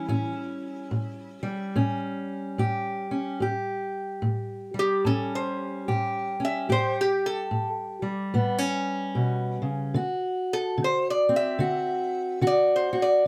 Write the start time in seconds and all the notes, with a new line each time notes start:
Already playing: E3 G3 E4 G4
0.08 A2 C#4
0.91 A2
1.43 G3
1.76 A2 C#4
2.58 A2 G4
3.11 C#4
3.40 A2 G4
4.22 A2
4.74 G3
4.79 G4
5.05 A2 C#4 A4
5.35 C5
5.88 A2 G4
6.40 C#4
6.45 E5
6.69 A2 G4 C5
7.01 G4
7.26 A4
7.51 A2
8.02 G3
8.34 A2 B3
8.58 C#4
9.15 B2
9.62 C#3
9.94 D3 F#4
10.53 A4
10.78 D3
10.84 C5
11.10 D5
11.29 C4
11.36 E5
11.59 D3 F#4
12.41 D3 F#4
12.47 D5
12.76 C5
12.93 F#4
13.02 D5